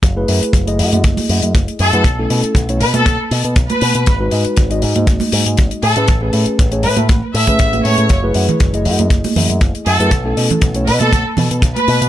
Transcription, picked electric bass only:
X:1
M:4/4
L:1/16
Q:"Swing 16ths" 1/4=119
K:F#dor
V:1 name="Picked electric bass" clef=bass
F,,,2 F,, z F,,,2 F,, F,, F,,, z F,, F,, F,,, z F,, F,, | B,,,2 B,, z B,,,2 B,, B,, B,,, z B,, B,, B,,, z B,, B,, | G,,,2 G,, z G,,,2 G,, G,, G,,, z G,, G,, G,,, z A,, A,, | A,,,2 A,, z A,,,2 A,, A,, A,,, z A,, A,, A,,,2 A,, A,, |
F,,,2 F,, z F,,,2 F,, F,, F,,, z F,, F,, F,,, z F,, F,, | B,,,2 B,, z B,,,2 B,, B,, B,,, z B,, B,, B,,, z B,, B,, |]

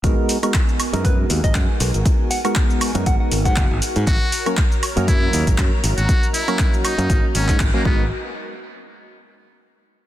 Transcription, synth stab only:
X:1
M:4/4
L:1/16
Q:"Swing 16ths" 1/4=119
K:G#m
V:1 name="Synth stab"
[G,B,DFA]3 [G,B,DFA] z3 [G,B,DFA]8- [G,B,DFA]- | [G,B,DFA]3 [G,B,DFA]4 [G,B,DFA]8- [G,B,DFA] | z3 [F,A,CFA] z3 [F,A,CFA]8- [F,A,CFA]- | [F,A,CFA]3 [F,A,CFA]4 [F,A,CFA]6 [F,A,CFA] [G,B,DFA]2 |
z16 |]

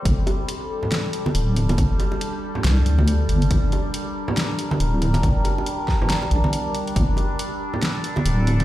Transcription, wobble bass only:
X:1
M:4/4
L:1/8
Q:"Swing 16ths" 1/4=139
K:Gm
V:1 name="Wobble bass" clef=bass
G,,, z4 z D,,,2 | G,,, z3 C,, D,,2 G,,, | G,,, z4 z D,,,2 | G,,, z4 B,,, z2 |
G,,, z4 z D,,,2 |]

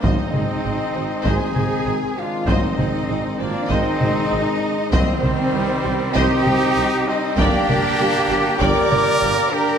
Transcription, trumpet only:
X:1
M:4/4
L:1/8
Q:1/4=98
K:Ablyd
V:1 name="Trumpet"
C4 E3 D | C3 B, C3 z | G,4 E3 C | D4 B3 G |]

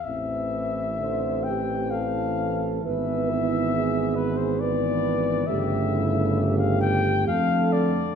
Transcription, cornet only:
X:1
M:3/4
L:1/16
Q:1/4=66
K:Am
V:1 name="Cornet"
e6 g2 f4 | e6 B c d4 | e4- e f g2 f2 d2 |]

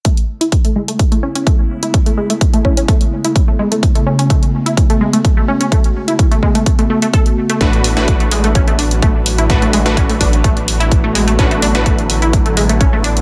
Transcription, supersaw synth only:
X:1
M:4/4
L:1/16
Q:1/4=127
K:A
V:1 name="Supersaw synth"
z16 | z16 | z16 | z16 |
[A,,A,DFB]3 [A,,A,DFB]12- [A,,A,DFB] | [A,,A,DFB]3 [A,,A,DFB]12- [A,,A,DFB] | [A,,A,DFB]3 [A,,A,DFB]12- [A,,A,DFB] |]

